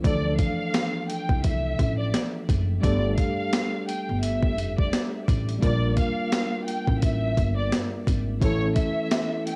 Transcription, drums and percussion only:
0.04 kick, closed hi-hat
0.39 kick, closed hi-hat
0.74 snare, closed hi-hat
1.10 closed hi-hat
1.29 kick
1.44 kick, closed hi-hat
1.79 kick, closed hi-hat
2.14 snare, closed hi-hat
2.49 kick, closed hi-hat
2.83 kick, closed hi-hat
3.18 kick, closed hi-hat
3.53 snare, closed hi-hat
3.89 closed hi-hat
4.23 closed hi-hat
4.42 kick
4.58 closed hi-hat
4.78 kick
4.93 snare, closed hi-hat
5.28 kick, closed hi-hat
5.49 closed hi-hat
5.62 kick, closed hi-hat
5.97 kick, closed hi-hat
6.32 snare, closed hi-hat
6.68 closed hi-hat
6.87 kick
7.02 kick, closed hi-hat
7.37 kick, closed hi-hat
7.72 snare, closed hi-hat
8.07 kick, closed hi-hat
8.42 kick, closed hi-hat
8.76 kick, closed hi-hat
9.11 snare, closed hi-hat
9.47 closed hi-hat

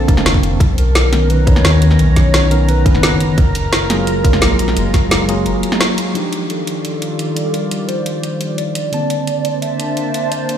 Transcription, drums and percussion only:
0.08 kick, closed hi-hat
0.17 snare
0.26 snare, closed hi-hat
0.34 kick
0.43 closed hi-hat
0.60 kick, closed hi-hat
0.78 closed hi-hat
0.95 snare, closed hi-hat
1.13 snare, closed hi-hat
1.30 closed hi-hat
1.47 kick, closed hi-hat
1.56 snare
1.65 snare, closed hi-hat
1.82 closed hi-hat
1.91 snare
1.99 closed hi-hat
2.16 kick, snare, closed hi-hat
2.34 snare, closed hi-hat
2.51 closed hi-hat
2.69 closed hi-hat
2.86 kick, closed hi-hat
2.95 snare
3.03 snare, closed hi-hat
3.20 closed hi-hat
3.38 kick, closed hi-hat
3.55 closed hi-hat
3.73 snare, closed hi-hat
3.90 snare, closed hi-hat
4.07 closed hi-hat
4.24 kick, closed hi-hat
4.33 snare
4.42 snare, closed hi-hat
4.59 closed hi-hat
4.68 snare
4.77 closed hi-hat
4.94 kick, snare, closed hi-hat
5.11 snare, closed hi-hat
5.29 closed hi-hat
5.46 closed hi-hat
5.63 closed hi-hat
5.72 snare
5.81 snare, closed hi-hat
5.98 closed hi-hat
6.15 closed hi-hat
6.33 closed hi-hat
6.50 closed hi-hat
6.67 closed hi-hat
6.85 closed hi-hat
7.02 closed hi-hat
7.19 closed hi-hat
7.37 closed hi-hat
7.54 closed hi-hat
7.71 closed hi-hat
7.89 closed hi-hat
8.06 closed hi-hat
8.23 closed hi-hat
8.41 closed hi-hat
8.58 closed hi-hat
8.75 closed hi-hat
8.93 closed hi-hat
9.10 closed hi-hat
9.27 closed hi-hat
9.45 closed hi-hat
9.62 closed hi-hat
9.80 closed hi-hat
9.97 closed hi-hat
10.14 closed hi-hat
10.32 closed hi-hat
10.49 closed hi-hat

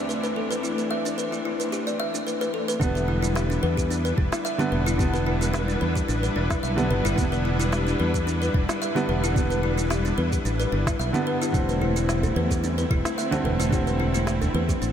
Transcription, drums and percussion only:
0.10 shaker
0.24 shaker
0.51 shaker
0.64 shaker
0.79 shaker
1.06 shaker
1.19 shaker
1.33 shaker
1.60 shaker
1.73 shaker
1.88 shaker
2.15 shaker
2.28 shaker
2.42 shaker
2.69 shaker
2.82 kick, shaker
2.97 shaker
3.24 shaker
3.36 snare, shaker
3.51 shaker
3.78 kick, shaker
3.91 shaker
4.06 shaker
4.18 kick
4.32 snare, shaker
4.46 shaker
4.60 shaker
4.87 shaker
5.00 kick, shaker
5.15 shaker
5.42 shaker
5.54 snare, shaker
5.69 shaker
5.96 kick, shaker
6.09 shaker
6.24 shaker
6.50 kick, snare, shaker
6.64 shaker
6.78 shaker
7.06 shaker
7.18 kick, shaker
7.33 shaker
7.60 shaker
7.73 snare, shaker
7.88 shaker
8.14 kick, shaker
8.28 shaker
8.43 shaker
8.54 kick
8.69 snare, shaker
8.82 shaker
8.97 shaker
9.24 shaker
9.36 kick, shaker
9.51 shaker
9.78 shaker
9.91 snare, shaker
10.05 shaker
10.32 kick, shaker
10.46 shaker
10.60 shaker
10.87 kick, snare, shaker
11.00 shaker
11.15 shaker
11.42 shaker
11.54 kick, shaker
11.69 shaker
11.81 djembe tone
11.96 shaker
12.09 snare, shaker
12.23 djembe bass, shaker
12.51 kick, djembe slap, djembe tone, shaker
12.64 shaker
12.78 djembe slap, shaker
12.91 kick, djembe tone
13.05 snare, djembe slap, shaker
13.19 shaker
13.32 djembe tone, shaker
13.45 djembe bass
13.60 shaker
13.72 kick, shaker
13.87 shaker
14.00 djembe tone
14.15 shaker
14.27 snare, shaker
14.41 djembe bass, shaker
14.69 kick, djembe tone, shaker
14.82 shaker

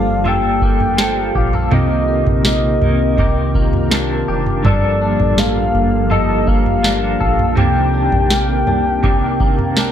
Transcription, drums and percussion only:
0.26 floor tom
0.62 kick
0.80 floor tom
0.98 snare
1.35 kick
1.53 floor tom
1.72 floor tom
2.27 floor tom
2.45 snare
2.82 floor tom
3.18 kick, floor tom
3.55 kick
3.73 floor tom
3.91 snare
4.46 floor tom
4.65 kick, floor tom
5.20 floor tom
5.38 snare
5.75 floor tom
6.11 floor tom
6.47 kick
6.66 floor tom
6.84 snare
7.21 kick
7.39 floor tom
7.57 floor tom
8.12 floor tom
8.30 snare
8.67 floor tom
9.04 kick, floor tom
9.40 kick
9.59 floor tom
9.77 snare

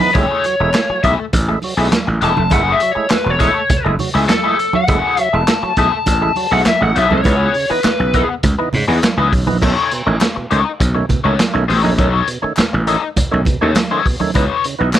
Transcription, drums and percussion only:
0.00 high conga
0.14 kick, closed hi-hat, muted conga
0.44 closed hi-hat
0.74 snare, clap, closed hi-hat, high conga
1.04 kick, closed hi-hat
1.33 kick, closed hi-hat, muted conga
1.62 open hi-hat, muted conga
1.92 snare, clap, closed hi-hat, high conga
2.22 closed hi-hat
2.37 high conga
2.50 kick, closed hi-hat, muted conga
2.80 closed hi-hat
3.10 snare, clap, closed hi-hat, high conga
3.40 kick, closed hi-hat
3.70 kick, closed hi-hat, muted conga, low conga
3.99 open hi-hat, muted conga, low conga
4.29 snare, clap, closed hi-hat, high conga
4.59 closed hi-hat
4.73 high conga
4.88 kick, closed hi-hat, muted conga
5.17 closed hi-hat
5.47 snare, clap, closed hi-hat, high conga
5.77 kick, closed hi-hat
6.06 kick, closed hi-hat, muted conga
6.36 open hi-hat, muted conga
6.65 snare, clap, closed hi-hat, high conga
6.96 closed hi-hat
7.10 high conga
7.24 kick, closed hi-hat, muted conga
7.54 open hi-hat
7.84 snare, clap, closed hi-hat, high conga
8.14 kick, closed hi-hat
8.43 kick, closed hi-hat, muted conga, low conga
8.73 open hi-hat, low conga
9.03 snare, clap, closed hi-hat, high conga
9.33 kick, open hi-hat
9.47 high conga
9.62 kick, crash, muted conga
9.91 closed hi-hat
10.21 snare, clap, closed hi-hat, high conga
10.51 closed hi-hat
10.80 kick, closed hi-hat, muted conga
11.09 kick, closed hi-hat, muted conga, low conga
11.39 snare, clap, closed hi-hat, high conga
11.70 open hi-hat
11.84 high conga
11.98 kick, closed hi-hat, muted conga
12.28 closed hi-hat
12.57 snare, clap, closed hi-hat, high conga
12.59 clap
12.87 closed hi-hat
13.16 kick, closed hi-hat, muted conga, low conga
13.45 kick, closed hi-hat, muted conga, low conga
13.76 snare, clap, closed hi-hat, high conga
14.06 kick, open hi-hat
14.20 high conga
14.34 kick, closed hi-hat, muted conga
14.64 closed hi-hat
14.93 snare, clap, closed hi-hat, high conga
14.95 clap

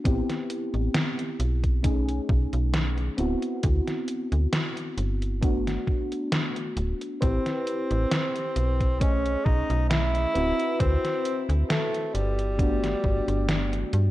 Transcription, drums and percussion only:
0.05 kick, closed hi-hat
0.30 snare, closed hi-hat
0.50 closed hi-hat
0.74 closed hi-hat
0.95 snare, closed hi-hat
1.19 closed hi-hat
1.40 closed hi-hat
1.64 kick, closed hi-hat
1.84 kick, closed hi-hat
2.09 closed hi-hat
2.29 kick
2.53 closed hi-hat
2.74 snare, closed hi-hat
2.98 closed hi-hat
3.18 closed hi-hat
3.42 closed hi-hat
3.63 kick, closed hi-hat
3.87 snare, closed hi-hat
4.08 closed hi-hat
4.32 closed hi-hat
4.53 snare, closed hi-hat
4.77 closed hi-hat
4.98 closed hi-hat
5.22 closed hi-hat
5.43 kick, closed hi-hat
5.67 snare, closed hi-hat
5.87 kick
6.12 closed hi-hat
6.32 snare, closed hi-hat
6.56 closed hi-hat
6.77 closed hi-hat
7.01 closed hi-hat
7.22 kick, closed hi-hat
7.46 snare, closed hi-hat
7.67 closed hi-hat
7.91 closed hi-hat
8.11 snare, closed hi-hat
8.36 closed hi-hat
8.56 closed hi-hat
8.80 kick, closed hi-hat
9.01 kick, closed hi-hat
9.26 closed hi-hat
9.46 kick
9.70 closed hi-hat
9.91 snare, closed hi-hat
10.15 closed hi-hat
10.35 closed hi-hat
10.59 closed hi-hat
10.80 kick, closed hi-hat
11.05 snare, closed hi-hat
11.25 closed hi-hat
11.50 closed hi-hat
11.70 snare, closed hi-hat
11.95 closed hi-hat
12.15 closed hi-hat
12.39 closed hi-hat
12.59 kick, closed hi-hat
12.84 snare, closed hi-hat
13.04 kick
13.28 closed hi-hat
13.49 snare, closed hi-hat
13.73 closed hi-hat
13.93 closed hi-hat

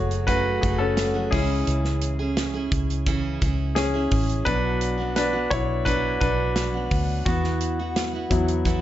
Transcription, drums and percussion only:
0.11 closed hi-hat
0.28 kick, closed hi-hat
0.63 kick, closed hi-hat
0.97 snare, closed hi-hat
1.33 kick, open hi-hat
1.67 closed hi-hat
1.84 snare
2.01 closed hi-hat
2.37 snare, closed hi-hat
2.72 kick, closed hi-hat
2.90 closed hi-hat
3.07 kick, closed hi-hat
3.42 kick, closed hi-hat
3.76 snare, closed hi-hat
4.11 kick, open hi-hat
4.29 closed hi-hat
4.47 kick, closed hi-hat
4.81 closed hi-hat
5.16 snare, closed hi-hat
5.51 kick, closed hi-hat
5.86 kick, closed hi-hat
6.21 kick, closed hi-hat
6.56 snare, closed hi-hat
6.91 kick, open hi-hat
7.26 kick, closed hi-hat
7.44 snare
7.61 closed hi-hat
7.96 snare, closed hi-hat
8.31 kick, closed hi-hat
8.48 closed hi-hat
8.65 kick, closed hi-hat

